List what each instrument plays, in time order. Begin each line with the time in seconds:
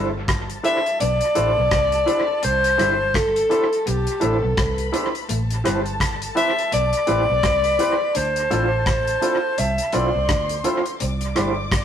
Already playing: fingered electric bass G1, clean electric guitar G3, string section A4 A5
0.28 kick, cross-stick, closed hi-hat
0.50 closed hi-hat
0.63 tine electric piano D4 E4 G4 A4, clean electric guitar E4 A4 C5, alto saxophone E5, closed hi-hat
0.86 closed hi-hat
1.00 fingered electric bass B1, clean electric guitar B3, alto saxophone D5, closed hi-hat
1.21 closed hi-hat
1.35 fingered electric bass A1, clean electric guitar A3 E4 A4 C5, tine electric piano D4 E4 G4 A4, closed hi-hat
1.57 fingered electric bass B1, clean electric guitar B3
1.71 fingered electric bass C2, clean electric guitar C4, kick, cross-stick, closed hi-hat
1.92 tine electric piano G4 A4, closed hi-hat
2.06 tine electric piano D4 E4 G4 A4, clean electric guitar E4 A4 C5, closed hi-hat
2.28 muted clean electric guitar stroke
2.43 fingered electric bass C2, clean electric guitar C4, alto saxophone C5, closed hi-hat
2.64 closed hi-hat
2.77 fingered electric bass G1, clean electric guitar G3 E4 A4 C5, tine electric piano D4 E4 G4 A4, cross-stick, closed hi-hat
3.14 alto saxophone A4, kick, cross-stick, closed hi-hat
3.36 closed hi-hat
3.49 tine electric piano D4 E4 G4 A4, clean electric guitar E4 A4 C5, closed hi-hat
3.73 closed hi-hat
3.81 alto saxophone A4
3.86 fingered electric bass B1, clean electric guitar B3, alto saxophone G4, closed hi-hat
4.07 closed hi-hat
4.20 fingered electric bass A1, clean electric guitar A3 E4 A4 C5, tine electric piano D4 E4 G4 A4, closed hi-hat
4.24 alto saxophone A4
4.43 fingered electric bass B1, clean electric guitar B3
4.57 fingered electric bass C2, clean electric guitar C4, string section B4 B5, kick, cross-stick, closed hi-hat
4.78 tine electric piano G4 A4, closed hi-hat
4.92 tine electric piano D4 E4 G4 A4, clean electric guitar E4 A4 C5, closed hi-hat
5.15 closed hi-hat
5.28 fingered electric bass A1, clean electric guitar A3, string section A4 A5, closed hi-hat
5.50 closed hi-hat
5.64 fingered electric bass G1, clean electric guitar G3 E4 G4 C5, tine electric piano C4 E4 G4 B4, cross-stick, closed hi-hat
5.86 closed hi-hat
6.00 kick, cross-stick, closed hi-hat
6.22 closed hi-hat
6.35 tine electric piano C4 E4 G4 B4, clean electric guitar E4 G4 C5, alto saxophone E5, closed hi-hat
6.59 closed hi-hat
6.72 fingered electric bass B1, clean electric guitar B3, alto saxophone D5, closed hi-hat
6.93 closed hi-hat
7.07 fingered electric bass A1, clean electric guitar A3 E4 G4 C5, tine electric piano C4 E4 G4 B4, closed hi-hat
7.29 fingered electric bass B1, clean electric guitar B3
7.43 fingered electric bass C2, clean electric guitar C4, string section B4 B5, kick, cross-stick, closed hi-hat
7.64 tine electric piano G4 B4, closed hi-hat
7.79 tine electric piano C4 E4 G4 B4, clean electric guitar E4 G4 C5, closed hi-hat
8.00 muted clean electric guitar stroke
8.15 fingered electric bass D2, clean electric guitar D4, string section A4 A5, alto saxophone C5, closed hi-hat
8.36 closed hi-hat
8.50 fingered electric bass A1, clean electric guitar A3 D4 F4 C5, tine electric piano C4 E4 F4 A4, closed hi-hat
8.86 alto saxophone C5, kick, cross-stick, closed hi-hat
9.07 closed hi-hat
9.21 tine electric piano C4 E4 F4 A4, clean electric guitar D4 F4 C5, closed hi-hat
9.58 fingered electric bass C2, clean electric guitar C4, alto saxophone E5, closed hi-hat
9.78 closed hi-hat
9.93 fingered electric bass B1, clean electric guitar B3 D4 F4 C5, tine electric piano C4 E4 F4 A4, string section C5 C6, alto saxophone D5, closed hi-hat
10.15 fingered electric bass C2, clean electric guitar C4
10.29 fingered electric bass D2, clean electric guitar D4, kick, cross-stick, closed hi-hat
10.49 tine electric piano F4 A4, closed hi-hat
10.64 tine electric piano C4 E4 F4 A4, clean electric guitar D4 F4 C5, closed hi-hat
10.86 closed hi-hat
11.00 fingered electric bass C2, clean electric guitar C4, string section D5 D6, closed hi-hat
11.21 closed hi-hat
11.35 fingered electric bass G1, clean electric guitar G3 E4 A4 C5, tine electric piano A3 D4 E4 G4, cross-stick, closed hi-hat
11.71 kick, cross-stick, closed hi-hat